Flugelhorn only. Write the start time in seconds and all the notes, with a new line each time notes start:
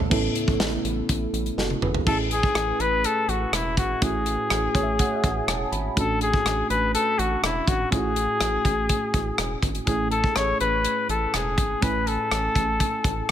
2.07 A4
2.32 G#4
2.81 B4
3.06 A4
3.29 F#4
3.54 E4
3.78 F#4
4.03 G#4
5.98 A4
6.22 G#4
6.70 B4
6.94 A4
7.19 F#4
7.44 E4
7.68 F#4
7.92 G#4
9.87 G#4
10.11 A4
10.36 C#5
10.60 B4
11.10 A4
11.35 G#4
11.83 B4
12.07 A4